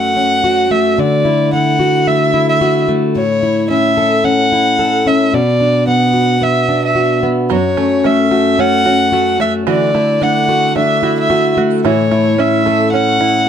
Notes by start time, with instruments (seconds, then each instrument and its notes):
Already playing: steel-string acoustic guitar F#2 A3 C#4 F#4, violin F#5
0.17 steel-string acoustic guitar C#4
0.44 steel-string acoustic guitar F#4
0.71 steel-string acoustic guitar A3, violin E5
0.98 steel-string acoustic guitar D3, violin D5
1.25 steel-string acoustic guitar E4
1.53 steel-string acoustic guitar A3, violin F#5
1.79 steel-string acoustic guitar F#4
2.07 steel-string acoustic guitar A3, violin E5
2.34 steel-string acoustic guitar E4
2.49 violin E5
2.61 steel-string acoustic guitar F#4
2.88 steel-string acoustic guitar A3
3.15 steel-string acoustic guitar A2, violin C#5
3.43 steel-string acoustic guitar E4
3.70 steel-string acoustic guitar C#4, violin E5
3.97 steel-string acoustic guitar A4
4.24 steel-string acoustic guitar C#4, violin F#5
4.52 steel-string acoustic guitar E4
4.79 steel-string acoustic guitar A4
5.06 steel-string acoustic guitar C#4, violin E5
5.34 steel-string acoustic guitar B2, violin D5
5.61 steel-string acoustic guitar D4
5.87 steel-string acoustic guitar B3, violin F#5
6.14 steel-string acoustic guitar F#4
6.42 steel-string acoustic guitar B3, violin E5
6.69 steel-string acoustic guitar D4
6.85 violin E5
6.95 steel-string acoustic guitar F#4
7.23 steel-string acoustic guitar B3
7.50 steel-string acoustic guitar F#2, five-string banjo F#3 F#4, violin C#5
7.77 five-string banjo A3, steel-string acoustic guitar C#4
8.04 steel-string acoustic guitar A3, five-string banjo C#4, violin E5
8.31 five-string banjo A3, steel-string acoustic guitar F#4
8.59 steel-string acoustic guitar A3, five-string banjo C#4, violin F#5
8.85 steel-string acoustic guitar C#4, five-string banjo F#4
9.12 five-string banjo A3, steel-string acoustic guitar F#4
9.40 steel-string acoustic guitar A3, five-string banjo F#4, violin E5
9.67 steel-string acoustic guitar D3, five-string banjo E3 F#4, violin D5
9.95 five-string banjo A3, steel-string acoustic guitar E4
10.21 steel-string acoustic guitar A3, five-string banjo D4, violin F#5
10.48 five-string banjo A3, steel-string acoustic guitar F#4
10.76 steel-string acoustic guitar A3, five-string banjo D4, violin E5
11.03 steel-string acoustic guitar E4, five-string banjo F#4
11.20 violin E5
11.30 five-string banjo A3, steel-string acoustic guitar F#4
11.57 steel-string acoustic guitar A3, five-string banjo F#4
11.85 steel-string acoustic guitar A2, five-string banjo E3 E4, violin C#5
12.11 five-string banjo A3, steel-string acoustic guitar E4
12.38 five-string banjo C#4, steel-string acoustic guitar C#4, violin E5
12.66 five-string banjo A3, steel-string acoustic guitar A4
12.92 steel-string acoustic guitar C#4, five-string banjo C#4, violin F#5
13.20 steel-string acoustic guitar E4, five-string banjo E4